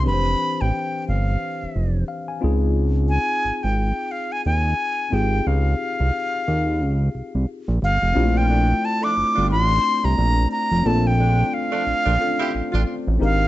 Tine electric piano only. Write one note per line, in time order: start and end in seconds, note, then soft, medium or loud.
0.04 2.37 E3 medium
0.04 2.36 C4 medium
0.04 2.37 D4 medium
0.04 2.37 G4 medium
0.04 0.14 B4 medium
0.14 2.41 C5 medium
2.08 2.26 F5 medium
2.28 2.72 G#5 medium
2.41 5.06 C4 medium
2.41 5.07 D#4 medium
2.41 5.07 F4 medium
2.41 5.08 G#4 medium
5.10 7.76 C4 medium
5.10 7.76 D#4 soft
5.10 7.77 F4 medium
5.10 7.77 G4 soft
5.10 7.78 G#4 medium
8.14 10.79 C4 medium
8.14 10.80 D4 medium
8.14 10.80 E4 medium
8.14 10.81 F4 medium
8.14 8.23 G4 medium
8.24 10.84 A3 medium
10.83 12.15 C4 medium
10.83 12.16 D4 medium
10.83 12.17 F4 medium
10.83 12.17 A4 medium
12.19 13.18 C4 soft
12.19 12.26 C#4 soft
12.19 13.20 F4 soft
12.19 13.21 A4 medium
12.26 13.19 D4 soft
13.19 13.48 C4 medium
13.19 13.48 D4 medium
13.19 13.48 D#4 medium
13.19 13.48 G4 medium
13.19 13.48 A#4 medium